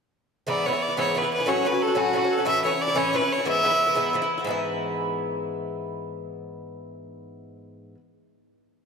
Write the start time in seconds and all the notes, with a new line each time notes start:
0.47 G#2 E3 B3 E4 D5
0.66 G#2 E3 B3 E4 C#5
0.73 E3 B3 E4
0.82 D5
0.88 E3 B3 E4
0.97 G#2 E3 B3 E4 C#5
1.15 G#2 E3 B3 E4 B4
1.22 E3 B3 E4
1.34 B4
1.38 E3 B3 E4
1.46 A2 F#3 C#4 F#4 C#5
1.65 A2 F#3 C#4 F#4 B4
1.72 F#3 C#4 F#4
1.82 A4
1.87 F#3 C#4 F#4
1.95 A2 F#3 C#4 F#4
2.13 A2 F#3 C#4 F#4
2.22 F#3 C#4 F#4
2.32 A4
2.38 F#3 C#4 F#4
2.45 A2 E3 C#4 E4 E5
2.63 A2 E3 C#4 E4 C#5
2.71 E3 C#4 E4
2.82 D5
2.87 E3 C#4 E4
2.95 A2 E3 C#4 E4 C#5
3.13 A2 E3 C#4 E4 B4
3.21 E3 C#4 E4
3.32 C#5
3.38 E3 C#4 E4
3.45 G#2 E3 B3 E4 E5
3.63 G#2 E3 B3 E4
3.71 E3 B3 E4
3.86 E3 B3 E4
3.95 G#2 E3 B3 E4
4.13 G#2 E3 B3 E4
4.22 E3 B3 E4
4.38 E3 B3 E4
4.44 G#2 E3
4.49 B3 E4